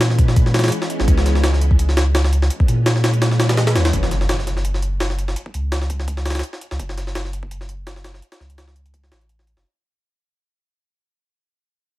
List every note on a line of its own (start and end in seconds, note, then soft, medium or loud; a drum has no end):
0.00 0.71 A#2 medium
0.00 snare loud
0.00 closed hi-hat medium
0.10 snare medium
0.19 kick loud
0.19 closed hi-hat medium
0.28 snare soft
0.36 kick loud
0.36 closed hi-hat medium
0.46 snare soft
0.54 snare loud
0.54 closed hi-hat medium
0.59 snare medium
0.59 closed hi-hat medium
0.64 snare medium
0.64 closed hi-hat medium
0.68 snare medium
0.68 closed hi-hat medium
0.72 closed hi-hat medium
0.82 snare medium
0.90 closed hi-hat medium
1.00 1.07 G#1 loud
1.00 snare medium
1.08 2.49 C#2 loud
1.08 kick loud
1.08 closed hi-hat medium
1.18 snare medium
1.26 snare soft
1.26 closed hi-hat medium
1.35 snare soft
1.44 snare loud
1.44 closed hi-hat medium
1.53 snare soft
1.61 closed hi-hat medium
1.71 kick loud
1.79 closed hi-hat medium
1.89 snare soft
1.97 snare loud
1.97 closed hi-hat medium
2.15 snare loud
2.15 closed hi-hat medium
2.24 snare medium
2.33 closed hi-hat medium
2.42 snare medium
2.50 closed hi-hat medium
2.60 kick loud
2.68 3.77 A#2 medium
2.68 closed hi-hat medium
2.86 snare loud
2.86 closed hi-hat medium
2.96 snare medium
3.04 snare loud
3.04 closed hi-hat medium
3.14 closed hi-hat soft
3.22 snare loud
3.22 closed hi-hat medium
3.31 snare soft
3.40 snare loud
3.40 closed hi-hat medium
3.49 snare loud
3.49 closed hi-hat medium
3.57 snare loud
3.57 closed hi-hat medium
3.67 snare loud
3.67 closed hi-hat medium
3.75 3.92 D#2 medium
3.75 snare loud
3.75 closed hi-hat medium
3.85 snare loud
3.85 closed hi-hat medium
3.93 5.35 F#1 loud
3.93 kick loud
3.93 closed hi-hat medium
3.93 impact medium
4.03 snare medium
4.11 snare soft
4.11 closed hi-hat medium
4.21 snare soft
4.29 snare loud
4.29 closed hi-hat medium
4.39 snare soft
4.47 snare soft
4.47 closed hi-hat medium
4.57 snare soft
4.65 closed hi-hat medium
4.74 snare soft
4.82 closed hi-hat medium
5.00 snare loud
5.00 closed hi-hat medium
5.10 snare medium
5.19 closed hi-hat medium
5.28 snare medium
5.36 closed hi-hat medium
5.46 kick medium
5.54 6.42 C#2 medium
5.54 closed hi-hat medium
5.72 snare loud
5.72 closed hi-hat medium
5.82 snare soft
5.90 kick loud
5.90 closed hi-hat medium
6.00 snare soft
6.08 kick loud
6.08 closed hi-hat medium
6.17 snare soft
6.26 snare medium
6.26 closed hi-hat medium
6.30 snare medium
6.30 closed hi-hat medium
6.35 snare medium
6.35 closed hi-hat medium
6.39 snare medium
6.39 closed hi-hat medium
6.43 closed hi-hat medium
6.53 snare medium
6.61 closed hi-hat medium
6.71 6.78 C#2 loud
6.71 snare medium
6.79 8.21 F#1 loud
6.79 kick loud
6.79 closed hi-hat medium
6.89 snare medium
6.97 snare soft
6.97 closed hi-hat medium
7.07 snare soft
7.15 snare loud
7.15 closed hi-hat medium
7.25 snare soft
7.33 closed hi-hat medium
7.43 kick medium
7.51 closed hi-hat medium
7.61 snare soft
7.69 closed hi-hat medium
7.87 snare loud
7.87 closed hi-hat medium
7.96 snare medium
8.04 snare loud
8.04 closed hi-hat medium
8.14 snare soft
8.22 closed hi-hat medium
8.32 snare loud
8.32 closed hi-hat medium
8.40 9.11 C#2 medium
8.40 snare soft
8.50 closed hi-hat medium
8.58 snare loud
8.58 closed hi-hat medium
8.68 snare soft
8.76 closed hi-hat medium
8.86 closed hi-hat soft
8.94 kick loud
8.94 closed hi-hat medium
9.04 snare soft
9.12 9.55 A1 medium
9.12 snare loud
9.12 closed hi-hat medium
9.21 closed hi-hat soft
9.29 closed hi-hat medium
9.39 snare soft
9.47 closed hi-hat medium
9.57 9.64 F#1 medium
9.57 snare medium